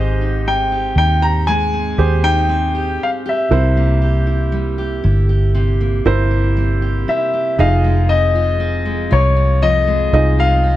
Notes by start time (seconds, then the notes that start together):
Already playing: G#1 G#2 G#3 C4 G4 G#4 C5 D#5
0.21 D#4
0.47 C4 G5
0.72 G4
0.96 D#2 D#4 G5
1.22 G4 A#5
1.47 G#3 G#5
1.74 C4
1.98 D#2 G4 G#4 C5
2.24 D#4 G5
2.49 C4
2.75 G4
3.03 F5
3.26 G4 E5
3.51 C2 C3 E4 G4 A#4 C5
3.77 A#3
4.02 G4
4.27 E4
4.52 G3
4.78 G4
5.04 G1 E4
5.29 G4
5.55 C3 G4
5.81 A#3
6.05 G1 E4 G4 A#4 C5
6.31 E4
6.57 G3
6.82 G4
7.08 E4 E5
7.33 G4
7.58 F1 F2 D#4 F4 G#4 D#5 F5
7.84 G#3
8.09 C4 D#5
8.35 F4
8.60 C4
8.86 G#3
9.11 C2 F4 C#5
9.36 C4
9.62 F2 F4 D#5
9.87 G#3
10.13 C2 C4 D#4 F4 G#4 D#5
10.39 F4 F5
10.64 C4